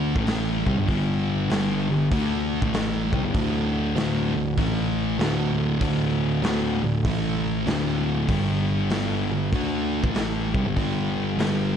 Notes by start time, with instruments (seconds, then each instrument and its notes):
Already playing: tine electric piano D2, distorted electric guitar D3 A3 D4
0.15 tine electric piano A1, distorted electric guitar A2 E3 A3, kick
0.27 snare, open hi-hat
0.66 tine electric piano C2, distorted electric guitar C3 G3, kick
0.77 tine electric piano G1, distorted electric guitar G2 D3
0.88 tine electric piano G1, distorted electric guitar G2 D3 G3, kick, open hi-hat
1.49 tine electric piano G1, distorted electric guitar G2 D3 G3, snare, open hi-hat
1.88 tine electric piano G1, distorted electric guitar G2 D3
2.12 tine electric piano D2, distorted electric guitar D3 A3 D4, kick, open hi-hat
2.62 tine electric piano A1, distorted electric guitar A2 E3 A3, kick
2.73 snare, open hi-hat
3.12 tine electric piano C2, distorted electric guitar C3 G3, kick
3.23 tine electric piano G1, distorted electric guitar G2 D3
3.34 distorted electric guitar D2 A2 D3, tine electric piano D2, kick, open hi-hat
3.95 tine electric piano D2, distorted electric guitar D2 A2 D3, snare, open hi-hat
4.35 distorted electric guitar D2 A2, tine electric piano D2
4.57 tine electric piano A1, distorted electric guitar A2 E3 A3, kick, open hi-hat
5.18 distorted electric guitar D2 A2 D3, tine electric piano D2, snare, open hi-hat
5.80 distorted electric guitar D2 A2 D3, tine electric piano D2, kick, open hi-hat
6.43 tine electric piano D2, distorted electric guitar D2 A2 D3, snare, open hi-hat
6.83 tine electric piano D2, distorted electric guitar D2 A2
7.05 tine electric piano A1, distorted electric guitar A2 E3 A3, kick, open hi-hat
7.66 distorted electric guitar D2 A2 D3, tine electric piano D2, snare, open hi-hat
8.29 tine electric piano G1, distorted electric guitar G2 D3 G3, kick, open hi-hat
8.90 tine electric piano G1, distorted electric guitar G2 D3 G3, snare, open hi-hat
9.30 tine electric piano G1, distorted electric guitar G2 D3
9.52 tine electric piano D2, distorted electric guitar D3 A3 D4, kick, open hi-hat
10.03 tine electric piano A1, distorted electric guitar A2 E3 A3, kick
10.14 snare, open hi-hat
10.54 tine electric piano C2, distorted electric guitar C3 G3, kick
10.65 tine electric piano G1, distorted electric guitar G2 D3
10.77 tine electric piano G1, distorted electric guitar G2 D3 G3, kick, open hi-hat
11.38 tine electric piano G1, distorted electric guitar G2 D3 G3, snare, open hi-hat